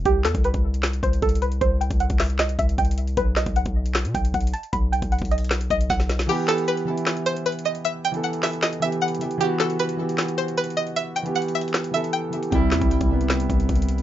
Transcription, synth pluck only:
X:1
M:4/4
L:1/8
Q:1/4=154
K:Em
V:1 name="Synth pluck"
G A B2 z c A B | c g f e ^d e g2 | B ^d f2 z g f a | b g f ^d2 d f2 |
G A B2 z c B ^d | e g f e ^d e f2 | G A B2 z c B ^d | e g f e2 e g2 |
z8 |]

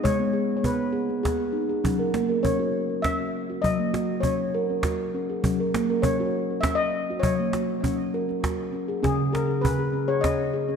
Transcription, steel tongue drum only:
X:1
M:3/4
L:1/16
Q:1/4=100
K:F#mix
V:1 name="Steel tongue drum"
G B, G2 B,2 G B, G2 D G | C A A, A C F2 z C2 z F- | F A, F2 C2 A C F2 C G | C A A, A C F2 z C2 z F- |
F A, F2 C2 A C F2 C G | C2 G2 C G C G C2 G C |]
V:2 name="Steel tongue drum" clef=bass
G,2 z8 z2 | F,2 z8 z2 | F,2 z8 z2 | F,2 z8 z2 |
F,2 z8 z2 | C,8 z4 |]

